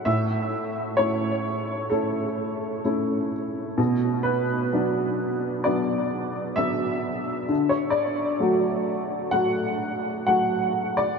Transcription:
X:1
M:4/4
L:1/16
Q:1/4=64
K:Bm
V:1 name="Upright piano"
e4 c4 A6 z2 | z2 B6 d4 e4- | e c d6 f4 f3 d |]
V:2 name="Upright piano"
A,,4 [A,CE]4 [A,CE]4 [A,CE]4 | B,,4 [F,B,D]4 [F,B,D]4 [F,B,D]4 | D,4 [F,A,F]4 [F,A,F]4 [F,A,F]4 |]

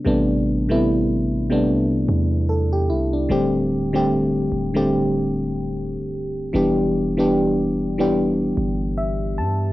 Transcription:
X:1
M:4/4
L:1/16
Q:"Swing 16ths" 1/4=74
K:Am
V:1 name="FM electric piano"
z12 A G E D- | D z12 z3 | z12 e2 a2 |]
V:2 name="FM electric piano"
[C,G,A,B,D]2 z [C,G,A,B,E]3 z [C,G,A,B,D]6 z3 | [D,G,A,CG]2 z [D,G,A,CG]3 z [D,G,A,CG]6 z3 | [E,G,B,DG]2 z [E,G,B,DG]3 z [E,G,B,DG]6 z3 |]
V:3 name="808-style bass" clef=bass
A,,,8 C,,2 E,,4 C,,2 | D,,,6 D,,,6- D,,, C,,,3 | E,,,8- E,,,2 G,,,4 G,,2 |]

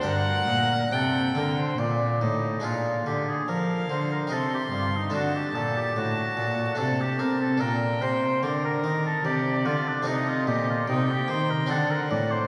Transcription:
X:1
M:3/4
L:1/16
Q:1/4=73
K:Gm
V:1 name="Violin"
^f4 g4 z4 | z4 f4 c'4 | a12 | g4 B4 d4 |
e4 g4 ^f4 |]
V:2 name="Oboe"
B4 A2 B c d2 E2 | F2 G _A B2 c B =A G F E | ^F G A G F4 A G B A | B2 c2 d B2 A G2 F D |
E F G F E G c B A B d c |]
V:3 name="Harpsichord"
[DB]12 | [_A,DF]8 [CE]4 | [A,D]8 [A,D]4 | D12 |
[A,CE]8 [CD]4 |]
V:4 name="Harpsichord" clef=bass
G,,2 B,,2 C,2 D,2 B,,2 A,,2 | B,,2 D,2 F,2 D,2 C,2 G,,2 | D,2 B,,2 A,,2 B,,2 C,2 C2 | B,,2 C,2 D,2 E,2 C,2 D,2 |
C,2 B,,2 C,2 E,2 D,2 A,,2 |]
V:5 name="Cello" clef=bass
G,,2 B,,2 C,2 D,2 B,,2 A,,2 | B,,2 D,2 F,2 D,2 C,2 G,,2 | D,2 B,,2 A,,2 B,,2 C,2 C2 | B,,2 C,2 D,2 E,2 C,2 D,2 |
C,2 B,,2 C,2 E,2 D,2 A,,2 |]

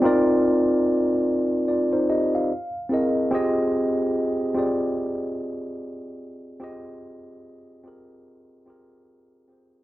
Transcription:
X:1
M:4/4
L:1/16
Q:"Swing 16ths" 1/4=73
K:Fdor
V:1 name="Tine electric piano"
[CEFBd]4- [CEFBd] z3 [Fd] [Ec] [Ge] f2 z [C=E^GB^d]2 | [CFGAe]4- [CFGAe] z [CFGAd]6 z4 | [CFGAe]4- [CFGAe] z [CFGAB]4 [CFGAB]4 [CFGAc]2 |]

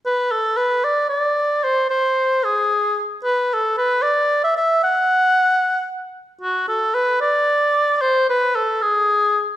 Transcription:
X:1
M:6/8
L:1/16
Q:3/8=75
K:D
V:1 name="Oboe"
B2 A2 B2 d2 d4 | =c2 c4 ^G4- G/2 z3/2 | B2 A2 B2 d3 e e2 | f8 z4 |
F2 A2 B2 d4- d3/2 d/2 | =c2 B2 A2 ^G4- G/2 z3/2 |]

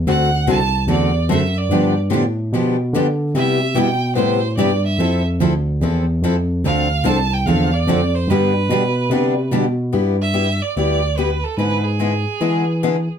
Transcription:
X:1
M:4/4
L:1/8
Q:"Swing" 1/4=146
K:Gmix
V:1 name="Violin"
^f2 a2 d2 e d- | d z6 z | e2 g2 c2 d e- | e z6 z |
f2 a g f d2 c | B6 z2 | [K:Em] z e2 d d2 B A | B ^G6 z |]
V:2 name="Steel-string acoustic guitar"
[D,A,C^FA] z [D,A,CFA] z [D,A,CFA] z [D,A,CFA] z | [D,F,B,DG] z [D,F,B,DG] z [D,F,B,DG] z [D,F,B,DG] z | [C,G,B,EG] z [C,G,B,EG] z [C,G,B,EG] z [C,G,B,EG] z | [F,CEA] z [F,CEA] z [F,CEA] z [F,CEA] z |
[D,F,CDA] z [D,F,CDA] z [D,F,CDA] z [D,F,CDA] z | [D,G,B,DG] z [D,G,B,DG] z [D,G,B,DG] z [D,G,B,DG] z | [K:Em] z8 | z8 |]
V:3 name="Steel-string acoustic guitar"
[D,A,C^FA] z [D,A,CFA] z [D,A,CFA] z [D,A,CFA] z | [D,F,B,DG] z [D,F,B,DG] z [D,F,B,DG] z [D,F,B,DG] z | [C,G,B,EG] z [C,G,B,EG] z [C,G,B,EG] z [C,G,B,EG] z | [F,CEA] z [F,CEA] z [F,CEA] z [F,CEA] z |
[D,F,CDA] z [D,F,CDA] z [D,F,CDA] z [D,F,CDA] z | [D,G,B,DG] z [D,G,B,DG] z [D,G,B,DG] z [D,G,B,DG] z | [K:Em] [G,B,EG] z [G,B,EG] z [G,B,EG] z [G,B,EG] z | [D,^G,B,E^G] z [D,G,B,EG] z [D,G,B,EG] z [D,G,B,EG] z |]
V:4 name="Tine electric piano" clef=bass
D,,2 C,,2 E,,2 ^F,,2 | G,,2 A,,2 B,,2 D,2 | C,2 B,,2 A,,2 G,,2 | F,,2 D,,2 E,,2 F,,2 |
D,,2 C,,2 E,,2 F,,2 | G,,2 B,,2 C,2 B,,2 | [K:Em] G,,4 D,,4 | ^G,,4 E,4 |]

